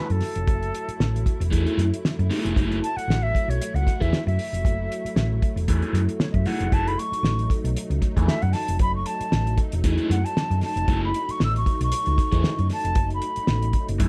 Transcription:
Already playing: F#3 A3 E4 B4
0.10 F#2 A4, closed hi-hat
0.20 snare, open hi-hat
0.35 F1, closed hi-hat
0.47 F#1, kick, closed hi-hat
0.63 closed hi-hat
0.75 closed hi-hat
0.88 muted fingered electric bass stroke, closed hi-hat
1.00 A1, snare
1.16 closed hi-hat
1.26 kick, closed hi-hat
1.40 E1, closed hi-hat
1.51 E2 A3 E4 G#4, kick, closed hi-hat
1.65 A3 E4 G#4, closed hi-hat
1.78 F#2, snare, closed hi-hat
1.94 closed hi-hat
2.05 snare
2.19 F#2, closed hi-hat
2.30 A3 E4 G#4, snare, open hi-hat
2.45 F1, closed hi-hat
2.55 F#1 A3 E4 G#4, kick, closed hi-hat
2.72 closed hi-hat
2.82 A5, closed hi-hat
2.96 F#5, muted fingered electric bass stroke, closed hi-hat
3.08 A1, snare
3.22 E5
3.35 kick, closed hi-hat
3.48 B1 C#5, closed hi-hat
3.61 closed hi-hat
3.74 C#2 F#5, closed hi-hat
3.87 kick, snare, closed hi-hat
4.01 E2 A3 E4 G#4 E5, kick, closed hi-hat
4.13 snare
4.27 F#2 E5, closed hi-hat
4.39 open hi-hat
4.53 F1, closed hi-hat
4.65 F#1, kick, closed hi-hat
4.92 closed hi-hat
5.05 muted fingered electric bass stroke, closed hi-hat
5.16 A1, snare
5.42 kick, closed hi-hat
5.56 E1, closed hi-hat
5.68 E2 A3 E4 G#4, kick, closed hi-hat
5.82 A3 E4 G#4, closed hi-hat
5.93 F#2, snare, closed hi-hat
6.09 closed hi-hat
6.20 C#5, snare
6.31 F#2 D#5 E5, kick, closed hi-hat
6.46 A3 E4 G#4 F#5, snare, open hi-hat
6.60 F1, closed hi-hat
6.72 F#1 A3 D#4 E4 G#4 A5, kick, closed hi-hat
6.87 B5, closed hi-hat
6.98 C#6, closed hi-hat
7.12 muted fingered electric bass stroke, closed hi-hat
7.23 A1, snare
7.39 closed hi-hat
7.50 kick, closed hi-hat
7.64 B1, closed hi-hat
7.77 closed hi-hat
7.90 C#2, closed hi-hat
8.02 kick, snare, closed hi-hat
8.17 E2 A3 E4 G#4, kick, closed hi-hat
8.26 E5, snare
8.42 F#2 F#5, closed hi-hat
8.53 A5, snare, open hi-hat
8.68 F1, closed hi-hat
8.79 F#1 B5, kick, closed hi-hat
8.95 C#6
9.06 A5, closed hi-hat
9.20 muted fingered electric bass stroke, closed hi-hat
9.32 A1, snare
9.47 closed hi-hat
9.58 kick, closed hi-hat
9.72 E1, closed hi-hat
9.84 E2 A3 E4 G#4, kick, closed hi-hat
9.98 A3 E4 G#4, closed hi-hat
10.10 F#2 F#5, snare, closed hi-hat
10.24 A5, closed hi-hat
10.37 snare
10.50 F#2, closed hi-hat
10.61 A5, snare, open hi-hat
10.76 F1, closed hi-hat
10.88 F#1 A3 E4 G#4, kick, closed hi-hat
11.04 B5
11.14 closed hi-hat
11.29 C#6, muted fingered electric bass stroke, closed hi-hat
11.40 A1 E6, snare
11.56 C#6, closed hi-hat
11.66 kick, closed hi-hat
11.81 B1 C#6, closed hi-hat
11.92 closed hi-hat
12.06 C#2, closed hi-hat
12.18 kick, snare, closed hi-hat
12.32 E2 A3 E4 G#4, kick, closed hi-hat
12.44 snare
12.59 F#2, closed hi-hat
12.70 A5, snare, open hi-hat
12.84 F1, closed hi-hat
12.95 F#1, kick, closed hi-hat
13.10 B5, closed hi-hat
13.22 closed hi-hat
13.36 muted fingered electric bass stroke, closed hi-hat
13.47 A1, snare
13.62 closed hi-hat
13.73 kick, closed hi-hat
13.89 F#1, closed hi-hat
13.99 F#2 A3 E4 G#4, kick, closed hi-hat

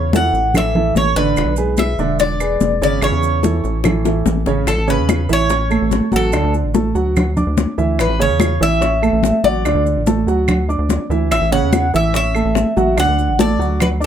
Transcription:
Already playing: E2 C#5
0.13 E3 E4 A4 F#5, high bongo, high conga, maracas
0.33 A1, high bongo, high conga, maracas
0.54 E3 E4 A4 E5, high bongo, high conga, low conga, claves, maracas
0.75 E3 E4 A4, high conga, low conga
0.95 A1 C#5, high bongo, low bongo, high conga, maracas
1.16 A1 D3 D4 B4 D5, high bongo, high conga, maracas
1.37 E1, high bongo, high conga, claves, maracas
1.46 B1
1.56 G#3 G#4 B4, high bongo, high conga, maracas
1.77 E5, high bongo, high conga, claves, maracas
1.98 E1 D3 D4 D5, high bongo, maracas
2.19 D5, high bongo, high conga, maracas
2.40 G#3 G#4 B4, high conga, claves, maracas
2.61 E1, high bongo, low bongo, high conga, maracas
2.81 G#1 C#3 C#4 C#5 D5, high bongo, high conga, maracas
3.02 A1 C#3 C#4 C#5, high bongo, high conga, claves, maracas
3.12 E2
3.23 high bongo, high conga, maracas
3.43 E3 E4 A4, high bongo, high conga, maracas
3.64 A1, high bongo, high conga, maracas
3.84 E3 E4 A4, high bongo, high conga, low conga, claves, maracas
4.05 E3 E4 A4, high bongo, high conga, maracas
4.26 A1, low bongo, high conga, maracas
4.46 A1 C#3 C#4 C#5, low bongo, high conga, maracas
4.67 A1 A4, high bongo, high conga, claves, maracas
4.78 A1
4.87 C#3 C#4 B4 C#5, high bongo, high conga, maracas
4.98 E2
5.09 high bongo, high conga, claves, maracas
5.29 A1 E3 E4 C#5 E5, high bongo, maracas
5.50 C#4 C#5 C#6, high bongo, high conga, maracas
5.70 A3 A4 A5, high conga, claves, maracas
5.82 A1
5.91 high bongo, low bongo, high conga, maracas
6.12 A1 F#3 F#4 F#5, high bongo, high conga, maracas
6.16 A4
6.32 D2 D3 D4 D5, high bongo, high conga, claves, maracas
6.43 D2
6.54 high bongo, high conga, maracas
6.64 A1
6.74 A3 A4 A5, high bongo, high conga, maracas
6.95 D2 F#3 F#4 F#5, high conga, maracas
7.16 high bongo, high conga, low conga, claves, maracas
7.37 D4 D5 D6, high bongo, high conga, low conga, maracas
7.47 D2
7.57 high bongo, low bongo, high conga, maracas
7.78 D2 E3 E4 E5, high bongo, high conga, maracas
7.99 A1 B4, high bongo, high conga, claves, maracas
8.09 A1
8.19 C#3 C#4 C#5, high bongo, high conga, maracas
8.29 E2
8.40 high bongo, high conga, claves, maracas
8.61 A1 E3 E4 E5, high bongo, maracas
8.81 C#4 C#5 C#6, high bongo, high conga, maracas
9.02 A3 A4 A5, high conga, claves, maracas
9.12 A1
9.23 high bongo, low bongo, high conga, maracas
9.44 A1 F#3 F#4 D5 F#5, high bongo, high conga, maracas
9.65 D2 D3 D4 D5, high bongo, high conga, claves, maracas
9.75 D2
9.86 high bongo, high conga, maracas
9.96 A1
10.06 A3 A4 A5, high bongo, high conga, maracas
10.27 D2 F#3 F#4 F#5, high conga, maracas
10.48 high bongo, high conga, low conga, claves, maracas
10.69 D4 D5 D6, high bongo, high conga, maracas
10.79 D2
10.89 high bongo, low bongo, high conga, maracas
11.10 D2 E3 E4 E5, high bongo, high conga, maracas
11.31 A1 E5, high bongo, high conga, claves, maracas
11.41 A1
11.51 C#3 C#4 C#5 F#5, high bongo, high conga, maracas
11.63 E2
11.73 high bongo, high conga, claves, maracas
11.94 A1 E3 E4 E5, high bongo, maracas
12.14 C#4 C#5 E5 C#6, high bongo, high conga, maracas
12.35 A3 A4 A5, high conga, claves, maracas
12.45 A1
12.55 high bongo, low bongo, high conga, maracas
12.77 A1 F#3 F#4 F#5, high bongo, high conga, maracas
12.97 D2 D3 D4 D5 F#5, high bongo, high conga, claves, maracas
13.08 D2
13.18 high bongo, high conga, maracas
13.29 A1
13.39 A3 A4 D5 A5, high bongo, high conga, maracas
13.59 D2 F#3 F#4 F#5, high conga, maracas
13.80 B4, high bongo, high conga, low conga, claves, maracas
14.00 D4 D5 D6, high bongo, high conga, maracas

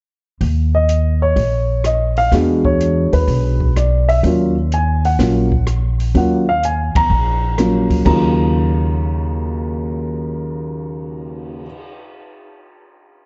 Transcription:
0.41 D#2, kick, open hi-hat
0.75 D#5
0.89 closed hi-hat
1.22 C#5
1.36 A#1, kick, open hi-hat
1.84 D#5, cross-stick, closed hi-hat
2.17 F5, open hi-hat
2.32 E2 G#3 B3 D4 F#4, kick, snare, open hi-hat
2.65 C#5, kick
2.81 closed hi-hat
3.13 D#2 B4, open hi-hat
3.28 B1, kick, open hi-hat
3.60 kick
3.76 D5, cross-stick, closed hi-hat
4.09 E5, open hi-hat
4.23 D#2 F#3 A#3 C#4 F4, kick, open hi-hat
4.72 G#5, closed hi-hat
5.05 F#5, open hi-hat
5.19 A#1 F#3 A#3 C#4 F4, kick, snare, open hi-hat
5.52 kick
5.67 cross-stick, closed hi-hat
6.00 open hi-hat
6.15 D#2 F#3 A#3 C#4 F4 F#5, kick, open hi-hat
6.49 F5
6.63 G#5, closed hi-hat
6.95 E2 A#5, kick, ride
7.10 A#1
7.58 F#3 A#3 C#4 F4, cross-stick, snare, closed hi-hat
7.90 kick, open hi-hat
8.05 D#2 C#3 F#3 F4 A#5, kick, crash
8.38 cymbal swell

